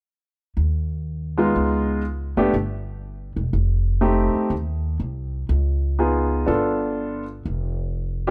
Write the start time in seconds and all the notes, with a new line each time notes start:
0.57 D#2
1.37 G#3 B3 D#4 F4
1.56 C#2
2.37 F#1 A3 B3 D4 G4
2.54 G1
3.36 E1
3.53 F1
4.01 A3 C4 D#4 G4
4.35 muted upright bass stroke
4.50 D#2
5.00 C2
5.49 C#2
5.99 B3 D#4 F4 G#4
6.46 G1 B3 D4 F4 A4
7.45 F1
8.27 G4